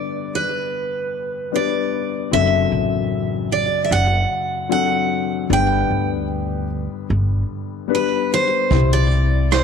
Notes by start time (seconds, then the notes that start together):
Already playing: G1 G2 G3 B3 D4 B4 D5
0.35 B4
1.52 G3 B3 D4 B4 D5
2.31 F#1 F#2 F#3 C4 D4 A4 E5
2.72 A1
3.52 D5
3.84 E5
3.91 F#1 F#5
4.69 F#3 C4 D4 A4 F#5
5.49 G1 G2 G3 B3 D4 B4 G5
5.91 D2
7.10 G1
7.88 G3 B3 D4 B4
7.95 B4
8.34 C5
8.70 C2 C3 G3 C4 E4 C5, kick, closed hi-hat
8.93 D5
9.11 closed hi-hat
9.51 C5, cross-stick, closed hi-hat